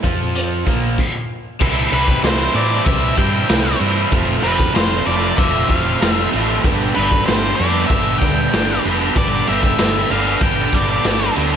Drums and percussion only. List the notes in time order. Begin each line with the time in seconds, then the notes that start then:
0.04 kick, closed hi-hat
0.35 closed hi-hat
0.67 kick, closed hi-hat
0.98 kick, crash
1.61 kick, crash
1.93 crash
2.08 kick
2.24 snare, crash
2.55 crash
2.86 kick, crash
3.18 kick, crash
3.49 snare, crash
3.80 crash
4.12 kick, crash
4.44 crash
4.60 kick
4.75 snare, crash
5.07 crash
5.38 kick, crash
5.70 kick, crash
6.02 snare, crash
6.33 crash
6.64 kick, crash
6.97 crash
7.11 kick
7.28 snare, crash
7.59 crash
7.90 kick, crash
8.22 kick, crash
8.53 snare, crash
8.85 crash
9.16 kick, crash
9.47 crash
9.63 kick
9.78 snare, crash
10.11 crash
10.41 kick, crash
10.73 kick, crash
11.04 snare, crash
11.36 crash